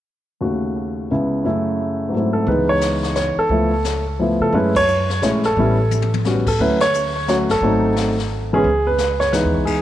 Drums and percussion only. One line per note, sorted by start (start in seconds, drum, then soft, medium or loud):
2.47 brush sweep soft
2.81 snare soft
2.81 hi-hat pedal medium
3.03 snare soft
3.15 snare soft
3.15 hi-hat pedal soft
3.50 brush sweep soft
3.85 snare soft
3.85 hi-hat pedal soft
4.54 brush sweep soft
4.75 kick medium
4.75 ride medium
4.88 hi-hat pedal medium
5.10 snare soft
5.22 snare soft
5.22 hi-hat pedal soft
5.44 snare soft
5.57 brush sweep soft
5.91 hi-hat pedal soft
5.91 high tom soft
6.02 high tom soft
6.14 high tom medium
6.25 snare soft
6.47 kick medium
6.47 crash medium
6.59 brush sweep soft
6.80 snare medium
6.80 ride medium
6.94 hi-hat pedal soft
7.28 snare soft
7.28 hi-hat pedal soft
7.49 snare soft
7.63 brush sweep soft
7.96 snare soft
7.96 hi-hat pedal soft
8.19 snare soft
8.65 brush sweep soft
8.98 snare medium
8.98 hi-hat pedal soft
9.21 snare soft
9.33 snare soft
9.33 hi-hat pedal soft
9.67 kick medium
9.67 crash medium